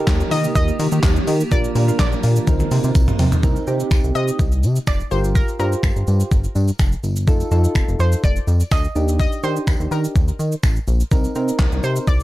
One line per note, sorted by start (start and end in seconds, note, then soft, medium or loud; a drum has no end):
0.00 1.50 D#3 medium
0.00 3.40 A#3 medium
0.00 0.72 D#4 loud
0.00 0.72 G4 medium
0.00 1.50 G4 loud
0.00 0.72 A#4 loud
0.07 0.23 D#2 loud
0.07 kick loud
0.07 snare medium
0.07 clap loud
0.07 closed hi-hat medium
0.07 tambourine medium
0.07 shaker medium
0.20 shaker medium
0.31 0.47 D#3 loud
0.31 0.54 D#5 loud
0.31 open hi-hat medium
0.31 tambourine medium
0.31 shaker medium
0.44 tambourine soft
0.44 shaker medium
0.55 0.71 D#2 loud
0.55 1.54 D#5 loud
0.55 kick loud
0.55 closed hi-hat medium
0.55 tambourine medium
0.55 shaker medium
0.68 shaker medium
0.79 0.88 D#3 loud
0.79 open hi-hat medium
0.79 tambourine medium
0.79 shaker medium
0.92 1.00 D#3 loud
0.92 tambourine soft
0.92 shaker medium
1.03 1.19 D#2 loud
1.03 kick loud
1.03 snare loud
1.03 clap loud
1.03 closed hi-hat medium
1.03 tambourine loud
1.03 shaker medium
1.16 shaker medium
1.27 1.43 D#3 loud
1.27 open hi-hat medium
1.27 tambourine medium
1.27 shaker medium
1.40 tambourine soft
1.40 shaker medium
1.51 1.67 A#1 loud
1.51 1.71 D4 medium
1.51 1.71 F4 medium
1.51 1.71 A#4 medium
1.51 1.99 D5 loud
1.51 kick loud
1.51 closed hi-hat medium
1.51 tambourine medium
1.51 shaker medium
1.64 shaker medium
1.75 1.91 A#2 loud
1.75 1.85 D4 medium
1.75 1.86 F4 medium
1.75 1.86 A#4 medium
1.75 open hi-hat medium
1.75 tambourine soft
1.75 shaker medium
1.88 2.47 D4 medium
1.88 2.47 F4 medium
1.88 2.46 A#4 medium
1.88 shaker medium
1.99 2.15 A#1 loud
1.99 2.44 D5 medium
1.99 kick loud
1.99 snare medium
1.99 clap loud
1.99 closed hi-hat medium
1.99 tambourine medium
1.99 shaker medium
2.12 shaker medium
2.23 2.39 A#2 loud
2.23 open hi-hat medium
2.23 tambourine medium
2.23 shaker medium
2.36 shaker medium
2.47 2.63 C2 loud
2.47 3.24 C4 medium
2.47 3.25 D#4 medium
2.47 3.25 A#4 medium
2.47 kick loud
2.47 closed hi-hat medium
2.47 high tom medium
2.47 tambourine medium
2.47 shaker medium
2.60 high tom medium
2.60 shaker medium
2.71 2.80 C3 loud
2.71 open hi-hat medium
2.71 tambourine medium
2.71 shaker medium
2.84 2.91 C3 loud
2.84 tambourine soft
2.84 shaker medium
2.95 3.11 C2 loud
2.95 kick loud
2.95 closed hi-hat medium
2.95 tambourine loud
2.95 shaker medium
3.08 mid tom medium
3.08 shaker soft
3.19 3.35 C3 loud
3.19 floor tom loud
3.19 open hi-hat medium
3.19 tambourine medium
3.19 shaker medium
3.32 floor tom loud
3.32 shaker medium
3.43 3.59 C2 medium
3.43 3.63 C4 medium
3.43 3.63 D#4 medium
3.43 3.63 A#4 medium
3.43 kick loud
3.43 tambourine medium
3.43 shaker medium
3.56 tambourine soft
3.56 shaker medium
3.67 3.83 C3 loud
3.67 4.43 C4 medium
3.67 4.43 D#4 medium
3.67 4.43 G4 medium
3.67 tambourine soft
3.67 shaker soft
3.80 shaker medium
3.91 3.99 C2 loud
3.91 finger snap loud
3.91 kick loud
3.91 tambourine medium
3.91 shaker medium
4.04 4.12 C2 loud
4.04 shaker soft
4.15 4.31 C3 loud
4.15 4.83 D#5 loud
4.15 tambourine soft
4.15 shaker medium
4.28 shaker medium
4.39 4.65 C2 loud
4.39 kick loud
4.39 tambourine soft
4.39 shaker medium
4.52 shaker medium
4.63 4.79 C3 loud
4.63 tambourine medium
4.63 shaker medium
4.76 tambourine soft
4.76 shaker medium
4.87 5.03 F1 medium
4.87 5.12 D5 loud
4.87 finger snap loud
4.87 kick loud
4.87 tambourine medium
4.87 shaker medium
5.00 shaker soft
5.11 5.43 G1 loud
5.11 5.50 F4 medium
5.11 5.50 G4 medium
5.11 5.50 A#4 medium
5.11 5.36 C5 medium
5.11 tambourine medium
5.11 shaker medium
5.24 tambourine soft
5.24 shaker medium
5.35 5.58 A#4 medium
5.35 kick loud
5.35 tambourine medium
5.35 shaker medium
5.48 shaker medium
5.59 5.75 G2 loud
5.59 6.35 F4 medium
5.59 6.35 G4 medium
5.59 7.00 A#4 medium
5.59 6.35 C5 medium
5.59 tambourine soft
5.59 shaker soft
5.72 shaker medium
5.83 5.92 G1 loud
5.83 finger snap loud
5.83 kick loud
5.83 tambourine medium
5.83 shaker medium
5.96 6.04 G1 medium
5.96 shaker soft
6.07 6.23 G2 loud
6.07 tambourine soft
6.07 shaker medium
6.20 tambourine soft
6.20 shaker medium
6.31 6.47 G1 loud
6.31 kick loud
6.31 tambourine soft
6.31 shaker medium
6.44 shaker medium
6.55 6.71 G2 loud
6.55 tambourine medium
6.55 shaker medium
6.68 tambourine soft
6.68 shaker medium
6.79 6.95 F1 loud
6.79 finger snap loud
6.79 kick loud
6.79 tambourine loud
6.79 shaker medium
6.92 shaker soft
7.03 7.29 G1 medium
7.03 tambourine medium
7.03 shaker medium
7.16 tambourine soft
7.16 shaker medium
7.27 7.43 F1 loud
7.27 7.47 D#4 medium
7.27 7.47 F4 medium
7.27 7.47 A4 loud
7.27 kick loud
7.27 tambourine medium
7.27 shaker medium
7.40 tambourine soft
7.40 shaker medium
7.51 7.67 F2 loud
7.51 8.27 D#4 medium
7.51 8.27 F4 medium
7.51 8.28 A4 loud
7.51 tambourine soft
7.51 shaker medium
7.64 shaker medium
7.75 7.84 F1 loud
7.75 finger snap loud
7.75 kick loud
7.75 tambourine medium
7.75 shaker medium
7.88 7.96 F1 loud
7.88 shaker soft
7.99 8.15 F2 loud
7.99 8.24 C5 medium
7.99 tambourine soft
7.99 shaker medium
8.12 tambourine soft
8.12 shaker medium
8.24 8.39 F1 loud
8.24 8.73 D5 loud
8.24 kick loud
8.24 tambourine soft
8.24 shaker medium
8.36 shaker medium
8.47 8.63 F2 loud
8.47 tambourine medium
8.47 shaker medium
8.60 tambourine soft
8.60 shaker medium
8.71 8.87 D2 medium
8.71 9.19 D#5 loud
8.71 finger snap loud
8.71 kick loud
8.71 tambourine medium
8.71 shaker medium
8.84 shaker soft
8.95 9.27 D#2 loud
8.95 9.34 D4 medium
8.95 9.35 D#4 medium
8.95 9.35 G4 medium
8.95 tambourine medium
8.95 shaker medium
9.09 tambourine soft
9.09 shaker medium
9.20 9.42 D#5 loud
9.20 kick loud
9.20 tambourine medium
9.20 shaker medium
9.32 tambourine soft
9.32 shaker medium
9.43 9.59 D#3 loud
9.43 10.19 D4 medium
9.43 10.19 D#4 medium
9.43 10.20 G4 medium
9.43 9.88 C5 loud
9.43 tambourine soft
9.43 shaker medium
9.56 shaker medium
9.67 9.76 D#2 loud
9.67 finger snap loud
9.67 kick loud
9.67 tambourine medium
9.67 shaker medium
9.80 9.87 D#2 medium
9.80 shaker soft
9.91 10.07 D#3 loud
9.91 10.84 A#4 medium
9.91 tambourine soft
9.91 shaker medium
10.04 shaker medium
10.15 10.31 D#2 loud
10.15 kick loud
10.15 tambourine soft
10.15 shaker medium
10.28 shaker medium
10.39 10.55 D#3 loud
10.39 tambourine medium
10.39 shaker medium
10.52 shaker medium
10.63 10.79 A1 medium
10.63 finger snap loud
10.63 kick loud
10.63 tambourine medium
10.63 shaker medium
10.76 shaker soft
10.88 11.03 A#1 loud
10.88 tambourine medium
10.88 shaker medium
11.00 shaker medium
11.11 11.27 C2 loud
11.11 11.31 C4 medium
11.11 11.31 D#4 medium
11.11 11.31 A#4 medium
11.11 kick loud
11.11 tambourine medium
11.11 shaker medium
11.24 tambourine soft
11.24 shaker medium
11.35 11.51 C3 medium
11.35 12.11 C4 medium
11.35 12.11 D#4 medium
11.35 12.12 A#4 loud
11.35 tambourine soft
11.35 shaker medium
11.48 shaker medium
11.59 11.68 C2 loud
11.59 kick loud
11.59 snare medium
11.59 clap loud
11.59 tambourine medium
11.59 shaker medium
11.72 11.80 C2 loud
11.72 shaker soft
11.83 11.99 C3 loud
11.83 12.08 C5 medium
11.83 tambourine soft
11.83 shaker medium
11.96 tambourine soft
11.96 shaker medium
12.07 12.23 C2 loud
12.07 12.23 D5 medium
12.07 kick loud
12.07 tambourine soft
12.07 shaker medium
12.20 shaker medium